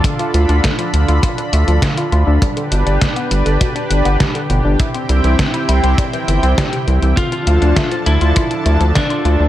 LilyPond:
<<
  \new Staff \with { instrumentName = "Analog synth pad" } { \time 4/4 \key d \dorian \tempo 4 = 101 << { <d d' f' b''>1 | <d' b'>1 | <c c' e' g''>1 | <d f d' a''>1 | } \\ { a'1 | g'1~ | g'1 | a'1 | } >> }
  \new Staff \with { instrumentName = "Lead electric guitar" } { \time 4/4 \key d \dorian r1 | r1 | r1 | f'4. e'4. d'4 | }
  \new Staff \with { instrumentName = "Synth arpeggio sound" } { \time 4/4 \key d \dorian d16 f'16 f'16 d'16 a16 f16 d16 f'16 f'16 d'16 a16 f16 d16 f'16 f'16 d'16 | g16 d16 b,16 d'16 d'16 b16 g16 d16 b,16 d'16 d'16 b16 g16 d16 b,16 d'16 | e'16 c'16 g16 e16 c16 e'16 e'16 c'16 g16 e16 e16 c'16 g16 c16 e16 e16 | d16 f'16 f'16 d'16 a16 f16 d16 f'16 f'16 d'16 a16 f16 d16 f'16 f'16 d'16 | }
  \new Staff \with { instrumentName = "Analog synth bass" } { \clef bass \time 4/4 \key d \dorian r8 d,16 d,16 r8 d,16 d,16 r8 d,16 d,16 r8 d,16 d,16 | r8 g,,16 g,,16 r8 g,,16 g,,16 r8 g,,16 g,,16 r8 g,,16 g,,16 | r8 c,16 c,16 r8 c,16 c,16 r8 g,,16 c,16 r8 c,16 c,16 | r8 d,16 d,16 r8 d,16 d,16 r8 d,16 d,16 r8 d,16 d,16 | }
  \new DrumStaff \with { instrumentName = "Drums" } \drummode { \time 4/4 <hh bd>16 hh16 hh16 hh16 <hh bd sn>16 hh16 hh16 hh16 <hh bd>16 hh16 hh16 hh16 <hh bd sn>16 hh16 hh8 | <hh bd>16 hh16 hh16 hh16 <hh bd sn>16 hh16 hh16 hh16 <hh bd>16 hh16 hh16 hh16 <hh bd sn>16 hh16 hh8 | <hh bd>16 hh16 hh16 hh16 <hh bd sn>16 hh16 hh16 hh16 <hh bd>16 hh16 hh16 hh16 <hh bd sn>16 hh16 hh16 hh16 | <hh bd>16 hh16 hh16 hh16 <hh bd sn>16 hh16 hh16 hh16 <hh bd>16 hh16 hh16 hh16 <hh bd sn>16 hh16 hh8 | }
>>